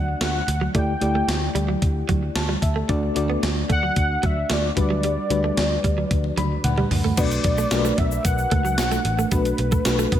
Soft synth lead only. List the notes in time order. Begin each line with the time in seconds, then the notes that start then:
Already playing: F#5
0.22 F#5
0.76 G5
3.72 F#5
4.26 E5
4.53 D5
4.79 D5
7.19 D5
7.99 E5
8.25 F#5
9.32 B4